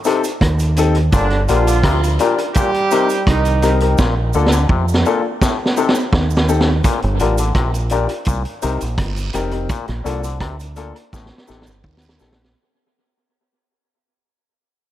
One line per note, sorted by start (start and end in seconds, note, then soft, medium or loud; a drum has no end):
0.04 0.22 C3 medium
0.04 0.21 C4 medium
0.04 0.21 D#4 medium
0.04 0.21 G4 medium
0.04 0.22 A4 loud
0.04 closed hi-hat medium
0.04 cabasa medium
0.24 closed hi-hat medium
0.24 cabasa medium
0.41 1.09 D#2 loud
0.41 kick loud
0.41 cross-stick loud
0.41 closed hi-hat medium
0.59 closed hi-hat medium
0.59 cabasa soft
0.76 0.93 C4 medium
0.76 0.93 D#4 medium
0.76 0.93 G4 medium
0.76 0.94 A4 loud
0.76 closed hi-hat medium
0.76 cabasa medium
0.95 closed hi-hat medium
1.12 1.46 G1 loud
1.12 1.29 A#2 medium
1.12 1.41 D3 loud
1.12 1.41 D4 loud
1.12 kick loud
1.12 closed hi-hat loud
1.12 cabasa medium
1.30 cross-stick medium
1.30 closed hi-hat soft
1.48 1.82 A#1 medium
1.48 1.64 D3 medium
1.48 2.16 F3 medium
1.48 1.64 D4 medium
1.48 2.16 F4 medium
1.48 1.64 F4 medium
1.48 1.64 G4 medium
1.48 1.65 A#4 medium
1.48 closed hi-hat medium
1.48 cabasa soft
1.67 1.81 D3 medium
1.67 closed hi-hat medium
1.67 cabasa medium
1.83 2.17 D2 medium
1.83 2.00 C3 medium
1.83 kick loud
1.83 cross-stick loud
1.83 closed hi-hat medium
2.03 closed hi-hat medium
2.03 cabasa medium
2.19 2.35 A#2 medium
2.19 2.35 D4 medium
2.19 2.36 F4 medium
2.19 2.36 G4 medium
2.19 2.36 A#4 loud
2.19 closed hi-hat medium
2.19 cabasa soft
2.38 closed hi-hat medium
2.54 2.71 A#2 medium
2.54 3.23 G3 loud
2.54 3.23 G4 loud
2.54 kick loud
2.54 closed hi-hat medium
2.54 cabasa medium
2.74 closed hi-hat medium
2.91 3.07 C3 medium
2.91 3.07 C4 loud
2.91 3.07 D#4 medium
2.91 3.07 G4 medium
2.91 3.07 A#4 loud
2.91 closed hi-hat medium
2.91 cabasa medium
3.10 closed hi-hat medium
3.10 cabasa medium
3.27 3.95 C2 loud
3.27 3.78 D#3 loud
3.27 3.78 D#4 loud
3.27 kick loud
3.27 cross-stick loud
3.27 closed hi-hat medium
3.45 closed hi-hat medium
3.45 cabasa soft
3.62 3.78 C4 medium
3.62 3.78 D#4 medium
3.62 3.79 G4 medium
3.62 3.79 A#4 loud
3.62 cross-stick medium
3.62 closed hi-hat medium
3.62 cabasa medium
3.80 3.96 C4 medium
3.80 3.96 D#4 medium
3.80 3.96 G4 medium
3.80 3.96 A#4 medium
3.80 closed hi-hat medium
3.98 4.32 A#1 medium
3.98 4.15 A#2 medium
3.98 kick loud
3.98 snare medium
3.98 cabasa medium
4.33 4.68 D2 medium
4.33 4.50 D3 medium
4.33 4.50 A#3 medium
4.33 4.50 D4 medium
4.33 4.50 F4 medium
4.33 4.50 A4 loud
4.33 cabasa soft
4.46 snare medium
4.52 4.67 D3 medium
4.52 cabasa medium
4.69 5.03 F2 medium
4.69 4.85 C3 medium
4.69 kick loud
4.88 cabasa medium
4.94 snare medium
5.06 5.21 A#2 medium
5.06 5.21 A#3 medium
5.06 5.21 D4 medium
5.06 5.21 F4 medium
5.06 5.22 A4 loud
5.06 cabasa soft
5.42 5.57 A2 medium
5.42 kick loud
5.42 snare medium
5.42 cabasa medium
5.66 snare medium
5.77 5.93 C3 medium
5.77 5.92 C4 medium
5.77 5.92 D#4 medium
5.77 5.93 G4 medium
5.77 5.93 A4 loud
5.77 cabasa medium
5.89 snare medium
5.95 cabasa medium
6.13 6.80 D#2 loud
6.13 kick loud
6.13 snare medium
6.30 cabasa soft
6.37 snare loud
6.48 6.64 C4 medium
6.48 6.64 D#4 medium
6.48 6.64 G4 medium
6.48 6.64 A4 loud
6.48 cabasa medium
6.61 snare medium
6.84 7.00 A#2 medium
6.84 kick loud
6.84 closed hi-hat loud
6.84 cabasa medium
7.02 7.19 G1 loud
7.02 closed hi-hat soft
7.19 7.54 A1 medium
7.19 7.36 D3 medium
7.19 7.35 D4 medium
7.19 7.36 F4 medium
7.19 7.36 G4 medium
7.19 7.36 A#4 loud
7.19 closed hi-hat medium
7.19 cabasa soft
7.38 7.53 D3 medium
7.38 closed hi-hat medium
7.38 cabasa medium
7.55 8.06 A#1 medium
7.55 7.71 C3 medium
7.55 kick loud
7.55 cross-stick loud
7.55 closed hi-hat medium
7.74 closed hi-hat medium
7.74 cabasa medium
7.89 8.07 A#2 medium
7.89 8.06 D4 medium
7.89 8.07 F4 medium
7.89 8.07 G4 medium
7.89 8.07 A#4 loud
7.89 closed hi-hat medium
7.89 cabasa soft
8.09 closed hi-hat medium
8.25 8.44 C2 loud
8.25 8.42 A#2 medium
8.25 kick loud
8.25 closed hi-hat medium
8.25 cabasa medium
8.45 closed hi-hat soft
8.62 8.81 C2 medium
8.62 8.78 C3 medium
8.62 8.78 C4 medium
8.62 8.78 D#4 medium
8.62 8.78 G4 medium
8.62 8.78 A#4 loud
8.62 closed hi-hat medium
8.62 cabasa medium
8.80 8.98 A#1 medium
8.80 closed hi-hat soft
8.80 cabasa medium
8.98 9.32 G1 loud
8.98 kick loud
8.98 cross-stick loud
8.98 closed hi-hat medium
8.98 long guiro medium
9.16 closed hi-hat medium
9.16 cabasa soft
9.33 9.67 F1 medium
9.33 9.49 C4 medium
9.33 9.49 D#4 medium
9.33 9.49 G4 medium
9.33 9.50 A#4 loud
9.33 cross-stick medium
9.33 closed hi-hat medium
9.33 cabasa medium
9.51 9.66 C4 medium
9.51 9.67 D#4 medium
9.51 9.67 G4 medium
9.51 closed hi-hat soft
9.69 9.86 A#2 medium
9.69 kick loud
9.69 closed hi-hat medium
9.69 cabasa medium
9.88 10.05 A#1 loud
9.88 cross-stick medium
9.88 closed hi-hat soft
10.04 10.39 C2 medium
10.04 10.21 D3 medium
10.04 10.20 A#3 medium
10.04 10.20 D4 medium
10.04 10.21 F4 medium
10.04 10.21 A4 medium
10.04 closed hi-hat medium
10.04 cabasa soft
10.24 10.39 D3 medium
10.24 closed hi-hat medium
10.24 cabasa medium
10.40 10.91 D2 medium
10.40 10.56 C3 medium
10.40 kick loud
10.40 cross-stick loud
10.40 closed hi-hat medium
10.60 closed hi-hat medium
10.60 cabasa medium
10.76 10.93 A#2 medium
10.76 10.92 A#3 medium
10.76 10.92 D4 medium
10.76 10.92 F4 medium
10.76 10.92 A4 loud
10.76 closed hi-hat medium
10.76 cabasa soft
10.96 closed hi-hat medium
11.13 11.30 A1 loud
11.13 11.28 A2 medium
11.13 kick loud
11.13 snare medium
11.13 cabasa medium
11.26 snare medium
11.38 snare medium
11.48 11.66 A1 medium
11.48 11.64 C3 medium
11.48 11.63 C4 medium
11.48 11.63 D#4 medium
11.48 11.64 G4 medium
11.48 11.64 A4 loud
11.48 snare medium
11.48 cabasa medium
11.62 snare medium
11.67 11.83 G1 medium
11.67 cabasa medium
11.84 12.18 D#2 medium
11.84 kick loud
11.84 long guiro medium
11.97 snare medium
12.02 cabasa soft
12.09 snare medium
12.19 12.54 A#1 medium
12.19 12.35 C4 medium
12.19 12.35 D#4 medium
12.19 12.35 G4 medium
12.19 12.35 A4 loud
12.19 snare medium
12.19 cabasa medium
12.32 snare medium
12.44 snare medium